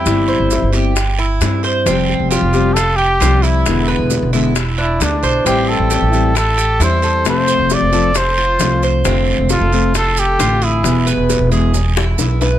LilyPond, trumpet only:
\new Staff \with { instrumentName = "Trumpet" } { \time 4/4 \key f \lydian \tempo 4 = 134 e'4. r2 r8 | r4 f'4 a'8 g'4 e'8~ | e'8 r2 e'8 d'4 | g'8 a'4. a'4 c''4 |
c''4 d''4 c''4. r8 | r4 f'4 a'8 g'4 e'8~ | e'8 r2. r8 | }